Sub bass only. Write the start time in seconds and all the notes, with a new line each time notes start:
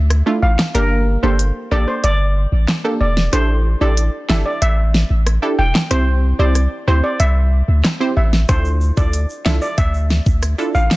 Already playing: D2
0.42 A1
0.75 G1
1.23 G1
1.71 A1
2.04 G1
2.52 A1
3.01 E1
3.33 A1
3.81 A1
4.30 G1
4.62 A1
5.10 A1
5.59 E1
5.91 C2
6.39 C2
6.88 D2
7.20 C2
7.68 D2
8.17 A1
8.49 D2
8.97 D2
9.46 C2
9.78 D2
10.26 D2
10.75 A1